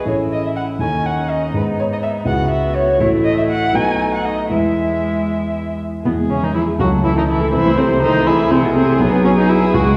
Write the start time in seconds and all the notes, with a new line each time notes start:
Already playing: B1 B3
0.05 A1 C#4 E4 A4 C#5
0.32 D#5
0.47 E5
0.56 F#5
0.79 D#2 C#4 D#4 A4 G#5
1.06 F#5
1.31 D#5
1.53 G#2 B3 D#4 G#4 B4
1.80 C#5
1.93 D#5
2.03 E5
2.25 C#2 B3 E4 F#4 G#4 F#5
2.51 E5
2.75 C#5
2.99 A1 A3 E4 F#4 C#5
3.24 D#5
3.38 E5
3.50 F#5
3.73 B1 A3 B3 D#4 F#4 G#5
4.14 F#5
4.25 D#5
4.50 E2 G#3 B3 E4 E5
6.05 E2 B2 B3 G#4
6.18 G#3
6.29 C#3 C#4 E4
6.42 D#3 G#3 D#4
6.54 E3 E4
6.67 G#4
6.79 C#2 F#3 F#4 A4
6.92 A3
7.04 E3 E4
7.16 D#3 A3 D#4
7.28 E3 E4
7.41 A4
7.53 C2 E3 E4 C5
7.66 A3
7.77 C3 C4 A4
7.90 A3
8.02 D#3 D#4 A4
8.14 E4
8.27 E3 E4 G#4 A4
8.39 E4
8.51 C3 C4 A4
8.63 B2 B3 E4
8.75 C3 C4 A4
8.88 E4
9.00 B1 F#3 B3
9.13 B3
9.24 C#4 F#4
9.37 B3 D#4
9.49 E4 F#4
9.62 B4
9.74 C#2 G#3 F#4
9.86 G#3